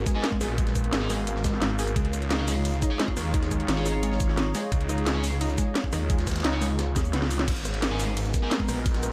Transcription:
Already playing: G#3 B3 C#4 F#4 A#4 F5
0.06 G#3, kick, snare, closed hi-hat, shaker
0.15 G#3 D#4 G#4
0.24 snare, closed hi-hat
0.32 kick
0.41 A#1 G#4, cross-stick, closed hi-hat, open hi-hat, shaker
0.58 G#3, kick, closed hi-hat
0.67 snare, closed hi-hat
0.75 kick, cross-stick, closed hi-hat, shaker
0.84 closed hi-hat
0.93 G#1 G#4, snare, closed hi-hat
1.01 G#3 D#4 G#4, snare
1.10 G#1 G#3, cross-stick, closed hi-hat, open hi-hat, shaker
1.27 closed hi-hat
1.36 snare
1.44 G#3, kick, snare, closed hi-hat, shaker
1.53 snare
1.62 G#3, snare, closed hi-hat
1.79 G#4, snare, open hi-hat, shaker
1.87 closed hi-hat
1.96 C#2 G#3 D#4 F4 C#5, kick, closed hi-hat
2.03 G#4, closed hi-hat
2.12 C#5, cross-stick, closed hi-hat, shaker
2.22 closed hi-hat
2.31 D#4, snare, closed hi-hat
2.39 C#4 G#4 C#5
2.48 G#3, closed hi-hat, open hi-hat, shaker
2.65 closed hi-hat, open hi-hat
2.74 closed hi-hat
2.82 D#4, kick, snare, closed hi-hat, shaker
2.91 C#4 G#4 C#5
3.00 G#3, snare, closed hi-hat
3.08 kick
3.17 D#2, cross-stick, closed hi-hat, open hi-hat, shaker
3.34 D#4, kick, closed hi-hat
3.43 snare, closed hi-hat
3.51 G#3, kick, cross-stick, closed hi-hat, shaker
3.60 closed hi-hat
3.68 G#1, snare, closed hi-hat
3.77 C#4 G#4 C#5, snare
3.86 D#4, cross-stick, closed hi-hat, open hi-hat, shaker
4.03 G#3, closed hi-hat
4.12 snare
4.20 kick, snare, closed hi-hat, shaker
4.29 snare
4.37 D#4, snare, closed hi-hat
4.55 G#3, snare, closed hi-hat, open hi-hat, shaker
4.72 C#2, kick, closed hi-hat
4.81 closed hi-hat
4.89 D#4, cross-stick, closed hi-hat, shaker
4.98 closed hi-hat
5.06 G#3, snare, closed hi-hat
5.15 C#4 G#4 C#5
5.24 open hi-hat, shaker
5.32 closed hi-hat
5.41 D#4, closed hi-hat, open hi-hat
5.50 closed hi-hat
5.58 G#3, kick, snare, closed hi-hat, shaker
5.75 snare, closed hi-hat
5.84 kick
5.93 D#2 D#4, cross-stick, closed hi-hat, open hi-hat, shaker
6.10 G#3, kick, closed hi-hat
6.18 snare, closed hi-hat
6.27 kick, cross-stick, snare, closed hi-hat, shaker
6.31 snare, closed hi-hat
6.36 snare, closed hi-hat, shaker
6.40 snare, closed hi-hat
6.44 C#2 D#4, snare, closed hi-hat
6.53 C#4 G#4 C#5, snare
6.62 G#3, cross-stick, closed hi-hat, open hi-hat, shaker
6.79 snare, closed hi-hat
6.96 D#2 G#4, kick, snare, closed hi-hat, shaker
7.05 shaker
7.13 C#2 B3, snare, closed hi-hat
7.22 snare
7.30 closed hi-hat, open hi-hat, shaker
7.39 snare, closed hi-hat
7.48 G#1 G#3 B3 C#4 A#4, kick, closed hi-hat, crash, ride
7.57 closed hi-hat
7.65 F#4, cross-stick, closed hi-hat, shaker
7.74 closed hi-hat
7.79 B3, snare, closed hi-hat, ride
7.91 G#3 D#4 G#4 D#5
8.00 closed hi-hat, open hi-hat, shaker
8.17 closed hi-hat, open hi-hat, ride
8.25 closed hi-hat
8.34 kick, snare, closed hi-hat, shaker
8.42 G#3 D#4 G#4
8.51 snare, closed hi-hat, ride
8.60 kick
8.69 A#1, cross-stick, closed hi-hat, open hi-hat, shaker
8.86 kick, closed hi-hat, ride
8.94 snare, closed hi-hat
9.03 cross-stick, closed hi-hat, shaker

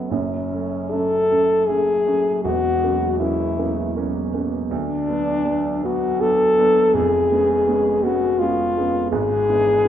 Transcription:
Already playing: F#3 A3 B3 C#4
0.10 F#1 F#2 C#4
0.52 F#3 A3 C#4
0.91 F#3 A3 C#4 A4
1.31 F#3 A3 C#4
1.68 F#3 A3 C#4 G#4
2.07 F#3 A3 C#4
2.44 E1 E2 F#4
2.83 F#3 A#3 C#4
3.20 F#3 A#3 C#4 E4
3.59 F#3 A#3 C#4
3.97 F#3 A#3 C#4
4.34 F#3 A#3 C#4
4.71 D2 D4
5.08 F#3 B3 D4
5.45 F#3 B3 D4
5.83 F#3 B3 D4 F#4
6.20 F#3 B3 D4 A4
6.58 F#3 B3 D4
6.94 F1 F2 G#4
7.32 G#3 B3 C#4
7.68 G#3 B3 C#4
8.03 G#3 B3 C#4 F#4
8.39 G#3 B3 C#4 F4
8.77 G#3 B3 C#4
9.12 G#1 G#2 G#4
9.49 E3 B3 D4
9.85 E3

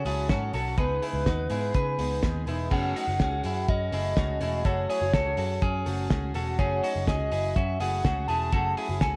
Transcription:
Already playing: C#5
0.05 C#2 F#3 C#4 E4 F#4 G#4 A4, open hi-hat
0.29 G#2 F#3 C#4 F#4 A4, kick, snare, closed hi-hat
0.53 B1 F#3 C#4 F#4 A4, open hi-hat
0.77 C#2 C#3 G#3 B3 D#4 G#4 B4, kick, closed hi-hat
1.02 E4 G#4, open hi-hat
1.13 C#2
1.26 D#2 D#4 F#4, kick, snare, closed hi-hat
1.50 G#2 G#3 B3 D#4 E4 G#4, open hi-hat
1.74 C#3 G#4 B4, kick, closed hi-hat
1.98 C#2 G#3 B3 D#4 G#4, open hi-hat
2.22 D#2 G#3 B3 D#4 G#4, kick, snare, closed hi-hat
2.46 E1 G#3 B3 D#4 E4 G#4, open hi-hat
2.70 F#1 F#3 A3 C#4 F#4 G#4 F#5, kick, crash
2.96 D#4 F#4, open hi-hat
3.07 F#1 C#4 F#4 G#4
3.20 C#2 C#4 G#4, kick, snare, closed hi-hat
3.31 C#4 F#4 G#4
3.44 F#2 E4 G#4, open hi-hat
3.68 F#2 C#4 F#4 D#5, kick, closed hi-hat
3.92 F#1 A3 C#4 E4 F#4 G#4, open hi-hat
4.16 C#2 A3 C#4 F#4 G#4, kick, snare, closed hi-hat
4.40 E1 A3 C#4 E4 F#4 G#4, open hi-hat
4.64 F#1 F#3 A3 C#4 F#4 G#4 A4 C#5, kick, closed hi-hat
4.90 E4 G#4 C#5, open hi-hat
5.00 F#1 C#4 F#4 G#4
5.13 C#2 F#4 A4, kick, snare, closed hi-hat
5.25 C#4 F#4 G#4
5.37 F#2 F#4 A4, open hi-hat
5.62 F#2 C#4 G#4, kick, closed hi-hat
5.86 F#1 A3 C#4 F#4 G#4, open hi-hat
6.09 C#2 A3 C#4 F#4 G#4, kick, snare, closed hi-hat
6.34 E1 A3 C#4 F#4 G#4 A4, open hi-hat
6.58 F#1 F#3 A3 C#4 F#4 G#4 C#5, kick, closed hi-hat
6.84 D#4 F#4, open hi-hat
6.94 F#1 C#4 F#4 G#4
7.07 C#2 C#4 G#4 D#5, kick, snare, closed hi-hat
7.19 C#4 F#4 G#4
7.32 F#1 E4 G#4, open hi-hat
7.55 F#2 C#4 F#4 E5, kick, closed hi-hat
7.80 F#1 A3 C#4 E4 F#4 G#4 F#5, open hi-hat
8.04 C#2 A3 C#4 F#4 G#4, kick, snare, closed hi-hat
8.28 E1 A3 C#4 E4 F#4 G#4 A5, open hi-hat
8.52 F#1 F#3 A3 C#4 F#4 G#4 A4, kick, closed hi-hat
8.77 E4 G#4, open hi-hat
8.89 F#1 C#4 F#4 G#4
9.01 C#2 F#4 A4 G#5, kick, snare, closed hi-hat

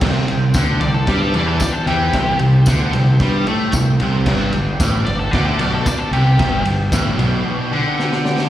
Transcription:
0.00 C2 C3 G4 C5 G5, kick, snare, crash
0.27 C2 C3, ride
0.54 D2 D3, kick, snare, ride, tambourine
0.80 C2 C3 D5, ride
0.94 A4
1.07 G2 G3 D5, kick, snare, ride
1.22 A4
1.34 E2 E3 D5, ride
1.47 A4
1.60 D5, muted picked electric bass stroke, muted distorted electric guitar stroke, kick, snare, ride, tambourine
1.73 A4
1.87 E2 E3 G4, ride
2.13 C2 C3, kick, snare, ride
2.39 C2 C3, ride
2.66 D2 D3, kick, snare, ride, tambourine
2.93 C2 C3, ride
3.20 G2 G3, kick, snare, ride
3.47 A2 A3, ride
3.72 C2 C3, kick, snare, ride, tambourine
4.00 C2 C3, ride
4.26 G1 G2 G4 D5 G5, kick, snare, crash
4.53 G1 G2, ride
4.80 A1 A2, kick, snare, ride, tambourine
5.05 G1 G2 D5, ride
5.19 A4
5.31 D2 D3 D5, kick, snare, ride
5.46 A4
5.59 B1 B2 D5, ride
5.74 A4
5.86 D5, muted picked electric bass stroke, muted distorted electric guitar stroke, kick, snare, ride, tambourine
5.99 A4
6.11 C2 C3 G4, ride
6.39 G1 G2, kick, snare, ride
6.65 G1 G2, ride
6.92 A1 A2, kick, snare, ride, tambourine
7.17 B1 B2, ride
7.72 D3
7.99 snare
8.12 snare
8.25 snare
8.38 snare

